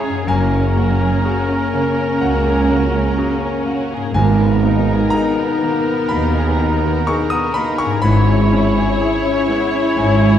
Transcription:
Already playing: G#2 G#3 C#4 E4 G#4 C#5 G#5 A#5
0.03 G#4
0.09 F#2
0.14 A#3
0.18 F#4
0.22 G#4
0.27 F#1 F#2 A#3 C#4 A#4 G#5
0.52 C#4
0.76 A#3 F#4
1.01 G#4
1.24 F#4 G#4
1.49 C#4
1.74 C#3 A#3
1.99 C#4
2.21 C#2 A#3 F#4 F#5
2.47 G#4
2.69 C#3 F#4
2.94 C#4
3.17 A#3 F#4 G#4
3.43 C#4
3.66 A#3 F#4
3.92 G#4
3.97 G#2
4.02 A#3
4.06 D#4
4.10 G#4 G#5
4.14 G#1 G#2 B2 A#3 B3 D#4 A#4
4.41 B3
4.63 A#3 D#4
4.92 G#4
5.10 D#4 G#4 A#5
5.15 D#4
5.41 B3
5.62 D#3 A#3
5.87 B3
6.09 D#2 A#3 D#4 B5
6.36 G#4
6.59 D#3 D#4
6.84 B3
7.07 A#3 D#4 G#4 C#6
7.30 B3 D#6
7.54 A#3 D#4 B5
7.78 G#4 C#6
7.86 G#2
7.90 C#4
7.95 E4
8.00 G#1 B3 G#4 C#5 B5
8.04 G#2 C#4 E4 C#5
8.28 C#4
8.52 C#4 E4
8.76 G#4
9.00 E4 G#4
9.24 C#4
9.49 G#3 B3
9.74 C#4
9.96 G#1 G#2 E4 G#5
10.21 G#4

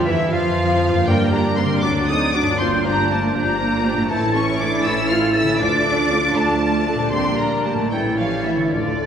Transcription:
Already playing: D3 A3 A4 D5
0.05 E2 E3 E4 E5
0.30 F2 F3 F4 F5
0.89 G2
0.93 A#3
0.98 G4
1.02 D5
1.06 G2 G3 A#3 D4 A#4 D5 G5 A#5
1.32 G3 A#3 D4 G4 D5 A#5
1.57 G3 A#3 C4 D4 A#4 D5 A#5 C6
1.65 D3
1.69 C4
1.73 F#4
1.78 D5 D6
1.83 D2 F#3 D4 F#4 D5 D6 A6
2.08 F#3 C4 D4 D#4 A4 D5 D#6 A6
2.34 F#3 D4 F#4 D5 D6 A6
2.41 G2
2.46 D4
2.50 F4
2.55 D4 D5 C6
2.59 G1 F3 A#3 C4 F4 D5 C6 G6
2.85 F3 A#3 D4 G4 D5 A#5 G6
3.10 F3 A3 A#3 D4 F4 D5 A5 G6
3.34 G1 F3 A#3 D4 G4 D5 A#5 G6
3.59 F3 A#3 D4 F4 D5 G6
3.84 F3 D4 G4 D5 G6
3.92 A2
3.97 A3
4.01 E4
4.06 E4 C#5
4.10 A1 E3 A3 C#4 E4 C#5 A5 A6
4.35 C#4 A4 C#6
4.59 A3 D4 E4 D6
4.84 A1 C#4 E4 A4 E6
5.09 A3 E4 F4 F6
5.35 C#4 E4 A4 E6
5.43 D3
5.47 A3
5.52 F4
5.56 D4 D5 D6
5.60 D2 D3 F3 A3 D4 F4 D5 D6
5.86 D4 A4
6.11 A3 F4
6.36 D2 A3 D4 A4 A5
6.61 A3 F4
6.86 D4 A4
6.94 A#2
6.99 G3
7.03 G4
7.08 D5
7.12 A#1 G3 A#3 C4 D4 G4 D5 A#5 C6
7.38 A#3 D4 A#4 A#5
7.65 A3 A#3 G4 A5
7.74 A2
7.78 A3
7.83 E4
7.87 A1 G3 A3 C#5 G5 A6
7.92 E3 C#4 E4 C#5 G5
8.18 F3 C#4 G4 F5
8.45 E3 A3 E4 E5
8.56 D3
8.60 A3
8.65 F4
8.69 D3 A3 D5
8.73 D2 F3 D4 F4 D5 A6
9.01 D4 A4

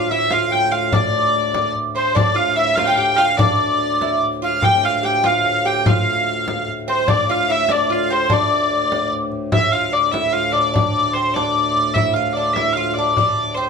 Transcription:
Already playing: D2 A2 F4 F5
0.09 E4 E5
0.30 F4 F5, frame drum
0.50 G5, frame drum
0.72 F4 F5
0.92 D4 D5, frame drum
1.54 D4, frame drum
1.76 frame drum
1.96 C4 C5
2.15 D4 D5, frame drum
2.35 F4 F5
2.56 E4 E5
2.75 F4 F5, frame drum
2.84 F4 F5 G5
2.88 F5
2.96 G4 G5, frame drum
3.16 F4 F5
3.37 D4 D5, frame drum
4.01 E4, frame drum
4.22 frame drum
4.42 F4 F5
4.62 D2 A2 G4 G5, frame drum
4.83 F4 F5
5.03 G4 G5
5.24 F4 F5, frame drum
5.45 F5, frame drum
5.65 G4 G5
5.86 F4 F5, frame drum
6.48 frame drum
6.68 frame drum
6.88 C4 C5
7.08 D4 D5, frame drum
7.28 F4 F5
7.49 E4 E5
7.69 D4 D5, frame drum
7.89 F4 F5, frame drum
8.10 C4 C5
8.30 D4 D5, frame drum
8.71 frame drum
8.92 frame drum
9.12 frame drum
9.32 frame drum
9.52 D2 A2 E4 E5, frame drum
9.72 F4 F5
9.93 D4 D5
10.11 E4 E5, frame drum
10.33 F4 F5
10.52 D4 D5, frame drum
10.74 D4 D5, frame drum
11.14 C4 C5
11.34 D4 D5, frame drum
11.77 frame drum
11.94 E4 E5, frame drum
12.13 F4 F5
12.33 D4 D5
12.53 E4 E5, frame drum
12.73 F5
12.77 F4
12.94 D5, frame drum
12.99 D4
13.13 D5, frame drum
13.18 D4
13.55 C4 C5, frame drum

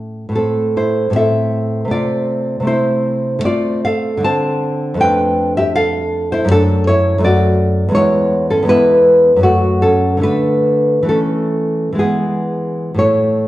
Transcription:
Already playing: A2 A3 C#4
0.29 A2 A3
0.35 C4 A4
0.77 E4 C5
1.10 A2 A3
1.15 C4 A4 E5
1.85 C3 A3
1.90 C4 F4 D5
2.60 C3 A3
2.65 C4 E4 C5
3.39 D3 A3
3.44 C4 F4 D5
3.85 A4 F5
4.17 D3 A3
4.23 C4 C5 A5
4.94 F2 A3
5.00 D4 B4 G5
5.57 G4 E5
5.76 A4 F5
6.32 E4 C5
6.45 F#2 A3
6.51 D4 A4
6.87 E4 C#5
7.18 F#2 A3
7.24 F#4 D5
7.89 E2 G#3
7.93 B3 E4 C#5
8.50 C#4 A4
8.63 E2 G#3
8.67 B3 E4 B4
9.36 F#2 F#3
9.43 A3 F#4
9.82 C#4 A4
10.17 D3 F#3
10.22 A3 D4 B4
11.03 E3 A3
11.09 C#4 A4
11.93 E3 G#3
11.98 B3 G#4
12.94 A2 E3 A3
12.99 E4 C#5

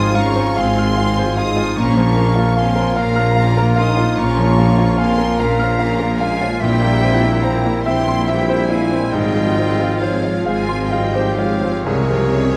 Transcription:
Already playing: G#1 G#2 F3 G#3 C4 D#4 F4 C5 F5 G#5 C6 D#6 F6
0.15 G#3 C4 C#4 G#4 F5 A#5 C#6
0.35 F3 G#3 F4 C5 G#5
0.56 G#1 G#2 G#3 C4 G#4 F5 G#5 C6
0.78 F3 G#3 F4 G#5 F6
0.97 G#3 C4 G#4 F5
1.18 F3 G#3 F4 C5 G#5
1.37 G#3 C4 D#4 G#4 F5 C6 D#6
1.57 F3 G#3 F4 G#5
1.77 A#1 A#2 F3 A#3 C#4 F4 A#4 F5 A#5 C#6
1.97 F3 A#3 F4 C#5
2.15 A#3 C#4 A#4 F5
2.35 F3 A#3 F4 C#5
2.57 A#3 C4 C#4 A#4 F5 G#5 C6
2.75 F3 A#3 F4 A#4 C#5
2.96 A#1 A#2 A#3 C#4 A#4 F5 A#5
3.16 F3 A#3 F4 C#5 F6
3.36 A#3 C#4 A#4 F5
3.57 F3 A#3 F4 A#4 C#5
3.76 D#4 A#4 F5 C6
3.80 A#3 C#4 D#6
3.97 F4 C#5
4.02 F3 A#3
4.17 A#1 A#2 C#4 A#4 F5 A#5 C#6
4.21 A#3 C#4
4.38 F3 A#3 F4 C#5
4.58 A#3 C#4 A#4 F5
4.78 F3 A#3 F4 C#5
4.98 A#3 C4 C#4 A#4 F5 G#5 C6
5.18 F3 A#3 F4 A#4 C#5
5.39 A#1 A#2 A#3 C#4 A#4 F5 A#5
5.59 F3 A#3 F4 C#5 F6
5.79 A#3 C#4 A#4 F5
6.00 F3 A#3 F4 A#4 C#5
6.19 G#3 A#3 C#4 A#4 F5 G#5
6.40 F3 A#3 F4 C#5
6.58 A#1 A#2 E3 G3 C4 E4 G4 C5 E5 G5
6.82 G3 A#3 E4 A#4
7.02 E3 C4 G4 C5
7.23 G3 A#3 E4 A#4
7.43 E3 A#3 C4 G4 C5 G5 A#5
7.66 G3 A#3 E4 A#4
7.84 A#1 A#2 E3 G3 C4 E4 G4 C5 E5 G5 C6
8.08 G3 A#3 E4 A#4 C6
8.27 E3 G3 C4 G4 C5 E5 G5
8.49 G3 A#3 E4 A#4 C5
8.69 E3 G#3 C4 E4 G4 C5 F5 G#5
8.92 G3 A#3 C4 E4 A#4
9.12 G#1 G#2 F3 G3 G#3 C4 F4 G#4 C5 D#5 G5
9.35 F3 G#3 F4 G#4
9.57 G#3 C4 G#4 C5
9.78 F3 G#3 F4 G#4
9.99 F3 G#3 C4 G#4 C5 C#5 F5
10.23 F3 G#3 F4 G#4
10.44 G#1 G#2 F3 G#3 C4 F4 G#4 C5 F5 G#5
10.68 F3 G#3 F4 G#4 C6
10.90 G3 G#3 C4 G#4 C5 D#5 F5 G5
11.13 F3 G#3 F4 G4 G#4 C5
11.36 F3 G#3 C4 F4 G#4 C5 C#5 F5
11.60 F3 G#3 C4 F4 G#4
11.84 C2 C3 C#3 F3 G#3 C4 G#4 A#4 C#5
12.09 C3 F3 G#3 F4 C5
12.33 G#3 C4 G#4

